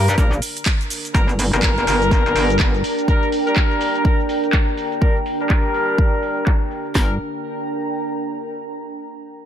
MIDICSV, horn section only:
0, 0, Header, 1, 2, 480
1, 0, Start_track
1, 0, Key_signature, -2, "minor"
1, 0, Tempo, 483871
1, 1137, Time_signature, 4, 2, 24, 8
1, 9379, End_track
2, 0, Start_track
2, 0, Title_t, "Horn section"
2, 0, Program_c, 0, 61
2, 0, Note_on_c, 0, 55, 88
2, 0, Note_on_c, 0, 62, 78
2, 0, Note_on_c, 0, 70, 97
2, 154, Note_off_c, 0, 55, 0
2, 154, Note_off_c, 0, 62, 0
2, 154, Note_off_c, 0, 70, 0
2, 175, Note_on_c, 0, 62, 75
2, 175, Note_on_c, 0, 70, 96
2, 176, Note_on_c, 0, 55, 86
2, 321, Note_off_c, 0, 62, 0
2, 321, Note_off_c, 0, 70, 0
2, 322, Note_off_c, 0, 55, 0
2, 1136, Note_on_c, 0, 55, 90
2, 1136, Note_on_c, 0, 62, 82
2, 1136, Note_on_c, 0, 70, 104
2, 1282, Note_off_c, 0, 55, 0
2, 1282, Note_off_c, 0, 62, 0
2, 1282, Note_off_c, 0, 70, 0
2, 1522, Note_on_c, 0, 55, 105
2, 1522, Note_on_c, 0, 62, 99
2, 1522, Note_on_c, 0, 70, 120
2, 2554, Note_off_c, 0, 55, 0
2, 2554, Note_off_c, 0, 62, 0
2, 2554, Note_off_c, 0, 70, 0
2, 2576, Note_on_c, 0, 55, 75
2, 2576, Note_on_c, 0, 62, 66
2, 2577, Note_on_c, 0, 70, 82
2, 2722, Note_off_c, 0, 55, 0
2, 2722, Note_off_c, 0, 62, 0
2, 2722, Note_off_c, 0, 70, 0
2, 3056, Note_on_c, 0, 55, 96
2, 3056, Note_on_c, 0, 62, 88
2, 3056, Note_on_c, 0, 70, 111
2, 3259, Note_off_c, 0, 55, 0
2, 3259, Note_off_c, 0, 62, 0
2, 3259, Note_off_c, 0, 70, 0
2, 3442, Note_on_c, 0, 55, 88
2, 3442, Note_on_c, 0, 62, 80
2, 3442, Note_on_c, 0, 70, 99
2, 3994, Note_off_c, 0, 55, 0
2, 3994, Note_off_c, 0, 62, 0
2, 3994, Note_off_c, 0, 70, 0
2, 4017, Note_on_c, 0, 55, 84
2, 4017, Note_on_c, 0, 62, 76
2, 4017, Note_on_c, 0, 70, 95
2, 4162, Note_off_c, 0, 55, 0
2, 4162, Note_off_c, 0, 62, 0
2, 4162, Note_off_c, 0, 70, 0
2, 4976, Note_on_c, 0, 70, 99
2, 4977, Note_on_c, 0, 55, 92
2, 4977, Note_on_c, 0, 62, 82
2, 5122, Note_off_c, 0, 55, 0
2, 5122, Note_off_c, 0, 62, 0
2, 5122, Note_off_c, 0, 70, 0
2, 5361, Note_on_c, 0, 55, 106
2, 5361, Note_on_c, 0, 62, 95
2, 5361, Note_on_c, 0, 70, 119
2, 6393, Note_off_c, 0, 62, 0
2, 6394, Note_off_c, 0, 55, 0
2, 6394, Note_off_c, 0, 70, 0
2, 6415, Note_on_c, 0, 55, 73
2, 6416, Note_on_c, 0, 62, 65
2, 6416, Note_on_c, 0, 70, 82
2, 6561, Note_off_c, 0, 55, 0
2, 6562, Note_off_c, 0, 62, 0
2, 6562, Note_off_c, 0, 70, 0
2, 6896, Note_on_c, 0, 55, 86
2, 6896, Note_on_c, 0, 62, 77
2, 6896, Note_on_c, 0, 70, 96
2, 7084, Note_off_c, 0, 55, 0
2, 7084, Note_off_c, 0, 62, 0
2, 7084, Note_off_c, 0, 70, 0
2, 9379, End_track
0, 0, End_of_file